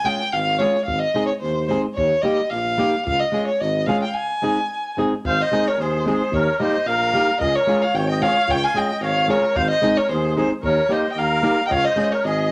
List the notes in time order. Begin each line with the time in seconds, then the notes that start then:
0.04 G#3 C#4 F4 G#4 G5, snare
0.20 snare
0.32 G#1 F5, snare
0.48 snare
0.59 G#3 C#4 F4 G#4 C#5, snare
0.75 snare
0.85 G#1 F5, kick
0.99 D#5
1.14 G#3 C4 D#4 G#4, snare
1.27 C#5
1.40 D#2 C5, snare
1.68 G#3 C4 D#4 G#4 C5, snare
1.95 D#2 C#5, kick
2.22 G3 A#3 D#4 G4 D#5
2.26 snare
2.50 A#1 F5, snare
2.78 G3 A#3 D#4 G4, snare
3.05 C#2 F5, kick
3.20 D#5
3.32 G#3 C#4 F4 G#4, snare
3.48 C#5
3.61 G#1 D#5, snare
3.87 G#3 C#4 F4 G#4 F5, snare
4.02 G5
4.06 F5 G5
4.14 G#5
4.42 G#3 C4 D#4 G#4
4.97 G#3 C4 D#4 G#4
5.24 G#1 C5 F5, kick
5.40 C5 D#5
5.52 G#3 C4 D#4 G#4, snare
5.67 A#4 C#5
5.78 D#2 G#4 C5, snare
6.06 G#3 C4 D#4 G#4 C5, snare
6.31 D#2 A#4 C#5, kick
6.60 G3 A#3 D#4 G4 C5 D#5
6.86 A#1 A#4 F5, snare
7.13 G3 A#3 D#4 G4, snare
7.39 C#2 G#4 D#5, kick
7.56 A#4 C#5
7.67 G#3 C#4 F4 G#4, snare
7.82 C#5 F5
7.93 G#1 C#5 G5, snare
8.09 D#5 G5
8.21 G#3 C#4 F4 G#4 C#5 F5, snare
8.48 C#2 C#5 G5, kick
8.63 F5 G#5, snare
8.74 G#3 C#4 F4 G#4 D#5 G5, snare
9.00 G#1 C#5 F5, snare
9.16 snare
9.28 G#3 C#4 F4 G#4 A#4 C#5, snare
9.55 G#1 C5 F5, kick
9.69 C5 D#5
9.82 G#3 C4 D#4 G#4, snare
9.96 A#4 C#5
10.09 D#2 G#4 C5, snare
10.35 G#3 C4 D#4 G#4 C5
10.62 D#2 A#4 C#5, kick
10.89 G3 A#3 D#4 G4 C5 D#5, snare
11.10 D#5 G5
11.16 D#2 A#4 F5, snare
11.43 G3 A#3 D#4 G4, snare
11.67 C#2 C#5 D#5 G5
11.71 F5, kick
11.84 C5 D#5
11.96 G#3 C#4 F4 G#4, snare
12.12 A#4 C#5
12.24 G#1 G#4 D#5, snare